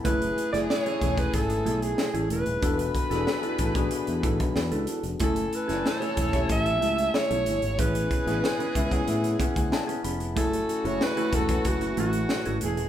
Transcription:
<<
  \new Staff \with { instrumentName = "Alto saxophone" } { \time 4/4 \key fis \minor \tempo 4 = 93 b'8. d''16 cis''8. b'16 a'8. gis'8. b'8~ | b'8 r2. r8 | a'8 b'8 cis''4 e''4 cis''4 | b'2 r2 |
a'8. cis''16 b'8 a'8 fis'8 fis'4 gis'8 | }
  \new Staff \with { instrumentName = "Clean electric guitar" } { \time 4/4 \key fis \minor <a e' gis'>16 r8 <a e' gis'>16 r16 <a e' gis'>16 <a e' gis'>16 r8. <a e' gis'>16 r8 <a e' gis'>16 <a e' gis'>16 r16 | <d' e' a'>16 r8 <d' e' a'>16 r16 <d' e' a'>16 <d' e' a'>16 r8. <d' e' a'>16 r8 <d' e' a'>16 <d' e' a'>16 r16 | <a e' gis'>16 r8 <a e' gis'>16 r16 <a e' gis'>16 <a e' gis'>16 r8. <a e' gis'>16 r8 <a e' gis'>16 <a e' gis'>16 r16 | <b cis' gis'>16 r8 <b cis' gis'>16 r16 <b cis' gis'>16 <b cis' gis'>16 r8. <b cis' gis'>16 r8 <b cis' gis'>16 <b cis' gis'>16 r16 |
<a e' gis'>16 r8 <a e' gis'>16 r16 <a e' gis'>16 <a e' gis'>16 r8. <a e' gis'>16 r8 <a e' gis'>16 <a e' gis'>16 r16 | }
  \new Staff \with { instrumentName = "Tine electric piano" } { \time 4/4 \key fis \minor << { r1 | r1 | r1 | r4. e''16 fis''16 e''8 fis''16 gis''16 a''8 b''8 |
r1 | } \\ { <a cis' e' gis'>8 r16 <a cis' e' gis'>8. r16 <a cis' e' gis''>4. r8. | <b d' fis' a'>8 r16 <b d' fis' gis' a'>8. r16 <b d' fis' gis'>4. r8. | <a cis' e' gis''>8 r16 <a cis' e' gis''>8. r16 <a cis' e' g' gis''>4. r8. | <b cis' e' gis'>8 r16 <b cis' e' gis'>8. r16 <b cis' e' gis'>4. r8. |
<a cis' e' gis''>8 r16 <a cis' e' gis'>8. r16 <a cis' e' b'>4. r8. | } >> }
  \new Staff \with { instrumentName = "Horn section" } { \time 4/4 \key fis \minor <e cis' gis'>2.~ <e cis' gis'>8 r8 | <e d' b'>2.~ <e d' b'>8 r8 | <e cis' a'>2.~ <e cis' a'>8 r8 | <e cis' gis'>2.~ <e cis' gis'>8 r8 |
<cis a fis'>2.~ <cis a fis'>8 r8 | }
  \new Staff \with { instrumentName = "Fretless electric bass" } { \clef bass \time 4/4 \key fis \minor fis,,8 r16 fis,,16 r8 e,,8 gis,,8 b,,8 r16 a,,16 e,,16 dis,,16 | e,,8 r16 e,,16 r8 a,,8 r16 e,16 a,,16 b,,16 e,16 cis,16 r16 eis,,16 | fis,,8 r16 fis,,16 r8 e,,8 a,,8 cis,8 r16 b,,16 g,,16 gis,,16 | a,,8 r16 a,,16 r8 cis,8 a,8 r16 d,16 r8 eis,,8 |
fis,,8 r16 fis,,16 r8 e,,8 fis,,8 a,,8 r16 gis,,16 e,,16 dis,,16 | }
  \new DrumStaff \with { instrumentName = "Drums" } \drummode { \time 4/4 <hh bd>16 hh16 hh16 <hh sn>16 sn16 hh16 <hh bd>16 <hh bd>16 <hh bd>16 hh16 hh16 hh16 sn16 hh16 hh16 hh16 | <hh bd>16 hh16 <hh bd>16 <hh sn>16 sn16 hh16 <hh bd>16 <hh bd>16 hh16 hh16 <hh bd>16 <hh bd>16 sn16 hh16 hh16 hh16 | <hh bd>16 hh16 hh16 <hh sn>16 sn16 hh16 <hh bd>16 <hh bd>16 <hh bd>16 hh16 hh16 hh16 sn16 hh16 hh16 hh16 | <hh bd>16 hh16 <hh bd>16 <hh sn>16 sn16 hh16 <hh bd>16 <hh bd>16 hh16 hh16 <hh bd>16 <hh bd>16 sn16 hh16 hh16 hh16 |
<hh bd>16 hh16 hh16 hh16 sn16 hh16 <hh bd>16 <hh bd>16 <hh bd>16 hh16 hh16 hh16 sn16 hh16 hh16 hh16 | }
>>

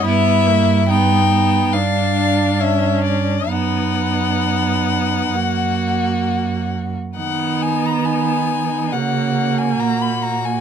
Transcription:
<<
  \new Staff \with { instrumentName = "Violin" } { \time 4/4 \key b \major \tempo 4 = 68 e''4 g''4 eis''4 e''8 d''8 | fis''2.~ fis''8 r8 | fis''8 gis''16 ais''16 gis''4 fis''8. gis''16 ais''16 b''16 ais''16 gis''16 | }
  \new Staff \with { instrumentName = "Violin" } { \time 4/4 \key b \major e'4 dis'4 d'2 | dis'2 fis'4.~ fis'16 r16 | dis'4 dis'4 fis'4 fis'4 | }
  \new Staff \with { instrumentName = "Viola" } { \time 4/4 \key b \major b8 ais8 b8 b8 d'4 cis'4 | b2 ais4.~ ais16 r16 | b2 ais2 | }
  \new Staff \with { instrumentName = "Cello" } { \clef bass \time 4/4 \key b \major g,2 g,2 | fis,2 fis,4.~ fis,16 r16 | dis2 cis4 ais,4 | }
>>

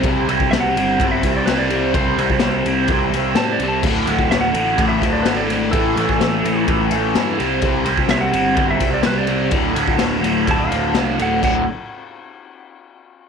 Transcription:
<<
  \new Staff \with { instrumentName = "Electric slide guitar" } { \time 4/4 \key d \mixolydian \tempo 4 = 126 r4 e''16 fis''4 e''8 d''16 b'16 d''8. | c''2 r4 \tuplet 3/2 { a''8 d''8 a''8 } | r4 e''16 fis''4 e''8 d''16 b'16 d''8. | a'2 r2 |
r4 e''16 fis''4 e''8 d''16 b'16 d''8. | r2 a''16 f''4~ f''16 fis''8 | fis''8 r2. r8 | }
  \new Staff \with { instrumentName = "Overdriven electric guitar" } { \clef bass \time 4/4 \key d \mixolydian <c g c'>8 <c g c'>8 <c g c'>8 <c g c'>8 <c g c'>8 <c g c'>8 <c g c'>8 <c g c'>8 | <c g c'>8 <c g c'>8 <c g c'>8 <c g c'>8 <c g c'>8 <c g c'>8 <c g c'>8 <c g c'>8 | <d, a, d>8 <d, a, d>8 <d, a, d>8 <d, a, d>8 <d, a, d>8 <d, a, d>8 <d, a, d>8 <d, a, d>8 | <a, e a>8 <a, e a>8 <a, e a>8 <a, e a>8 <a, e a>8 <a, e a>8 <a, e a>8 <c g c'>8 |
<c g c'>8 <c g c'>8 <c g c'>8 <c g c'>8 <c g c'>8 <c g c'>8 <c g c'>8 <c g c'>8 | <d, a, d>8 <d, a, d>8 <d, a, d>8 <d, a, d>8 <d, a, d>8 <d, a, d>8 <d, a, d>8 <d, a, d>8 | <d, a, d>8 r2. r8 | }
  \new Staff \with { instrumentName = "Picked electric bass" } { \clef bass \time 4/4 \key d \mixolydian c,8 c,8 c,8 g,,8 g,,8 c,8 c,4 | c,8 c,8 c,8 c,8 c,8 c,8 a,8 c,8 | d,,8 d,,8 d,,8 a,,8 a,,8 d,,8 gis,,4 | a,,8 a,,8 a,,8 a,,8 a,,8 a,,8 g,8 c,8 |
c,8 c,8 c,8 g,,8 g,,8 c,8 c,4 | d,,8 d,,8 d,,8 d,,8 d,,8 d,,8 c,8 d,,8 | d,,8 r2. r8 | }
  \new DrumStaff \with { instrumentName = "Drums" } \drummode { \time 4/4 <bd cymr>8 cymr16 bd16 <cymr sn>8 cymr8 <bd cymr>8 <bd cymr>8 <cymr sn>8 cymr8 | <bd cymr>8 cymr16 bd16 <cymr sn>8 cymr8 <bd cymr>8 cymr8 <cymr sn>8 cymr8 | <cymc bd>8 cymr16 bd16 <cymr sn>8 cymr8 <bd cymr>8 <bd cymr>8 <cymr sn>8 cymr8 | <bd cymr>8 cymr16 bd16 <cymr sn>8 cymr8 <bd cymr>8 cymr8 <cymr sn>8 cymr8 |
<bd cymr>8 cymr16 bd16 <cymr sn>8 cymr8 <bd cymr>8 <bd cymr>8 <cymr sn>8 cymr8 | <bd cymr>8 cymr16 bd16 <cymr sn>8 cymr8 <bd cymr>8 cymr8 <cymr sn>8 cymr8 | <cymc bd>4 r4 r4 r4 | }
>>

